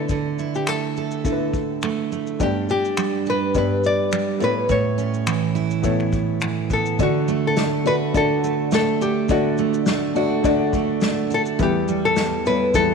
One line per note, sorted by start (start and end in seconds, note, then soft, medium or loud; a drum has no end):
0.00 0.10 D3 medium
0.00 0.73 A3 medium
0.00 0.73 D4 medium
0.00 0.74 E4 medium
0.00 0.55 A4 medium
0.00 0.74 D5 medium
0.09 1.25 D3 medium
0.09 kick medium
0.09 shaker medium
0.39 2.46 E4 medium
0.39 shaker soft
0.55 0.69 G4 medium
0.55 shaker soft
0.67 1.82 A3 medium
0.67 1.25 A4 medium
0.67 finger snap loud
0.67 shaker medium
0.96 2.47 A4 medium
0.96 shaker soft
1.11 shaker soft
1.24 2.46 D3 medium
1.24 2.09 A3 medium
1.24 2.09 D4 medium
1.24 2.09 E4 medium
1.24 1.32 A4 medium
1.24 kick medium
1.24 shaker medium
1.32 2.13 B4 medium
1.54 kick medium
1.54 shaker soft
1.82 2.11 A3 medium
1.82 finger snap medium
1.82 shaker medium
2.12 2.47 A3 medium
2.12 shaker soft
2.27 shaker soft
2.39 3.54 G2 medium
2.39 3.24 B3 medium
2.39 3.24 D4 medium
2.39 3.24 G4 medium
2.39 2.68 G4 medium
2.39 3.25 D5 medium
2.39 kick medium
2.39 shaker medium
2.69 4.48 D4 medium
2.69 3.29 G4 medium
2.69 shaker soft
2.85 shaker soft
2.97 4.11 G3 medium
2.97 finger snap loud
2.97 shaker medium
3.26 4.48 G4 medium
3.26 3.57 B4 medium
3.26 shaker soft
3.53 4.41 G2 medium
3.53 4.37 B3 medium
3.53 4.39 D4 medium
3.53 4.39 G4 medium
3.53 4.40 D5 medium
3.53 kick medium
3.53 shaker medium
3.58 3.86 B4 medium
3.84 4.43 D5 loud
3.84 shaker soft
4.12 4.48 G3 medium
4.12 finger snap loud
4.12 shaker medium
4.39 4.68 A2 medium
4.39 5.32 B3 medium
4.39 5.33 E4 medium
4.39 5.33 A4 medium
4.39 5.33 C#5 medium
4.39 shaker medium
4.44 4.71 B4 loud
4.69 5.83 A2 medium
4.69 6.39 C#5 medium
4.69 kick medium
4.69 shaker medium
4.98 7.06 C#4 medium
4.98 shaker soft
5.14 shaker soft
5.27 6.40 E3 medium
5.27 finger snap loud
5.27 shaker medium
5.55 7.06 E4 medium
5.55 shaker soft
5.71 shaker soft
5.82 7.06 A2 medium
5.82 6.68 B3 medium
5.82 6.68 E4 medium
5.82 6.69 A4 medium
5.82 6.69 C#5 medium
5.82 kick medium
5.82 shaker medium
6.00 finger snap soft
6.13 kick medium
6.13 shaker soft
6.41 6.99 E3 medium
6.41 finger snap loud
6.41 shaker medium
6.70 7.06 B3 medium
6.70 6.99 A4 medium
6.70 kick medium
6.70 shaker medium
6.86 shaker soft
6.98 8.13 D3 medium
6.98 7.63 A3 medium
6.98 7.63 D4 medium
6.98 7.63 F#4 medium
6.98 7.64 D5 medium
6.98 kick medium
6.98 shaker medium
7.03 7.47 F#4 medium
7.28 7.55 A3 medium
7.28 shaker medium
7.47 7.87 A4 medium
7.57 8.43 A3 medium
7.57 snare loud
7.57 shaker medium
7.84 8.07 A3 medium
7.84 8.07 D4 medium
7.84 8.07 F#4 medium
7.84 10.15 F#4 medium
7.84 7.95 B4 loud
7.84 8.08 D5 medium
7.84 shaker soft
8.13 9.29 D3 medium
8.13 8.98 A3 medium
8.13 8.99 D4 medium
8.13 8.99 F#4 medium
8.13 8.99 D5 medium
8.13 kick medium
8.13 shaker medium
8.17 8.74 A4 loud
8.44 8.71 A3 medium
8.44 shaker medium
8.71 9.58 A3 medium
8.71 9.03 A4 medium
8.71 snare loud
8.71 shaker medium
9.01 11.29 D4 medium
9.01 9.31 G4 medium
9.01 shaker medium
9.28 10.44 D3 medium
9.28 9.93 A3 medium
9.28 9.93 D4 medium
9.28 9.93 F#4 medium
9.28 10.13 F#4 medium
9.28 9.94 D5 medium
9.28 kick loud
9.28 shaker medium
9.58 9.87 A3 medium
9.58 shaker soft
9.74 shaker soft
9.86 10.73 A3 medium
9.86 snare loud
9.86 shaker medium
10.14 10.37 A3 medium
10.14 10.37 D4 medium
10.14 11.66 F#4 medium
10.14 10.38 F#4 medium
10.14 10.38 D5 medium
10.14 shaker soft
10.43 11.66 D3 medium
10.43 11.28 A3 medium
10.43 11.29 D4 medium
10.43 11.29 F#4 medium
10.43 11.29 D5 medium
10.43 kick loud
10.43 shaker medium
10.73 11.01 A3 medium
10.73 kick medium
10.73 shaker soft
11.01 11.66 A3 medium
11.01 snare loud
11.01 shaker medium
11.30 11.65 D4 medium
11.30 11.41 A4 medium
11.30 shaker medium
11.46 shaker soft
11.59 12.74 E2 medium
11.59 12.23 G3 medium
11.59 12.23 B3 medium
11.59 12.23 E4 medium
11.59 12.07 G4 medium
11.59 12.24 B4 medium
11.59 kick medium
11.59 shaker medium
11.88 12.94 G3 medium
11.88 shaker soft
12.05 12.47 A4 medium
12.16 12.94 E3 medium
12.16 snare loud
12.16 shaker medium
12.45 12.67 G3 medium
12.45 12.67 B3 medium
12.45 12.68 E4 medium
12.45 12.94 E4 medium
12.45 12.75 B4 loud
12.45 12.68 C#5 medium
12.45 shaker soft
12.74 12.94 E2 medium
12.74 12.94 G3 medium
12.74 12.94 B3 medium
12.74 12.94 E4 medium
12.74 12.94 A4 loud
12.74 12.94 B4 medium
12.74 kick medium
12.74 shaker medium